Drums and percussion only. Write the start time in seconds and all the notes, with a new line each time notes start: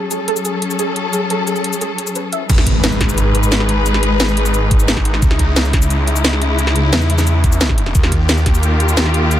0.11 closed hi-hat, shaker
0.28 closed hi-hat
0.36 shaker
0.45 closed hi-hat, shaker
0.62 closed hi-hat
0.71 shaker
0.79 closed hi-hat, shaker
0.96 closed hi-hat
1.13 closed hi-hat, shaker
1.30 closed hi-hat
1.47 closed hi-hat, shaker
1.56 shaker
1.64 closed hi-hat
1.73 shaker
1.81 closed hi-hat, shaker
1.98 closed hi-hat, shaker
2.07 shaker
2.15 closed hi-hat, shaker
2.33 closed hi-hat, shaker
2.50 kick, closed hi-hat, crash, shaker
2.58 snare
2.67 kick, closed hi-hat
2.84 snare, closed hi-hat, shaker
2.92 shaker
3.01 kick, snare, closed hi-hat
3.09 shaker
3.18 closed hi-hat, shaker
3.35 closed hi-hat, shaker
3.43 shaker
3.52 snare, closed hi-hat, shaker
3.60 snare
3.69 closed hi-hat
3.86 closed hi-hat, shaker
3.94 snare
4.03 closed hi-hat
4.20 snare, closed hi-hat, shaker
4.28 shaker
4.37 closed hi-hat
4.46 shaker
4.54 closed hi-hat, shaker
4.71 kick, closed hi-hat, shaker
4.80 shaker
4.88 snare, closed hi-hat, shaker
4.97 kick, snare
5.05 closed hi-hat
5.14 snare
5.22 kick, closed hi-hat, shaker
5.31 snare
5.39 kick, closed hi-hat
5.56 snare, closed hi-hat, shaker
5.65 shaker
5.73 kick, snare, closed hi-hat
5.82 shaker
5.90 closed hi-hat, shaker
6.07 closed hi-hat, shaker
6.16 shaker
6.24 snare, closed hi-hat, shaker
6.33 snare
6.42 closed hi-hat
6.59 closed hi-hat, shaker
6.67 snare
6.76 closed hi-hat
6.93 snare, closed hi-hat, shaker
7.01 shaker
7.10 closed hi-hat
7.18 snare, shaker
7.27 closed hi-hat, shaker
7.44 kick, closed hi-hat, shaker
7.52 shaker
7.61 snare, closed hi-hat, shaker
7.69 kick, snare
7.78 closed hi-hat
7.86 snare
7.95 kick, closed hi-hat, shaker
8.03 snare
8.12 kick, closed hi-hat
8.29 snare, closed hi-hat, shaker
8.38 shaker
8.46 kick, snare, closed hi-hat
8.55 shaker
8.63 closed hi-hat, shaker
8.80 closed hi-hat, shaker
8.89 shaker
8.97 snare, closed hi-hat, shaker
9.06 snare
9.14 closed hi-hat
9.31 closed hi-hat, shaker